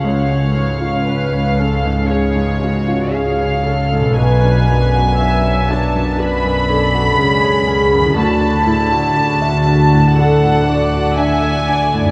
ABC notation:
X:1
M:4/4
L:1/16
Q:1/4=59
K:C#phr
V:1 name="Violin section"
^e8 c4 e4 | g6 a2 b8 | a8 f4 g4 |]
V:2 name="Viola section"
c4 B2 A2 G2 F2 G2 A2 | B4 e2 D2 B2 A2 G4 | F2 E2 F4 A2 d2 e2 d2 |]
V:3 name="Harp"
[C,C^Ec]16 | [B,,B,Fc]16 | [D,EFd]16 |]
V:4 name="Grand piano"
C,, C G,, ^E C c C G,, C G,, C E C c C G,, | B,,, D F,, F D c D F,, D F,, D F C c C F,, | D,, D A,, F D e D A,, D A,, D F D e D A,, |]
V:5 name="Cello section" clef=bass
C,16 | B,,12 C,4 | D,16 |]
V:6 name="Double bass section" clef=bass
C,,16 | B,,,12 C,,4 | D,,16 |]